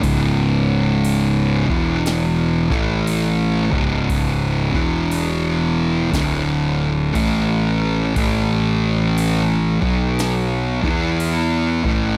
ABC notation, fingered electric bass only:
X:1
M:4/4
L:1/8
Q:"Swing" 1/4=59
K:E
V:1 name="Fingered electric bass" clef=bass
C,,,3 E,,,2 A,,,2 C,,,- | C,,, E,,,3 =D,,,2 A,,,2 | A,,,3 B,,,2 E,,2 A,,, |]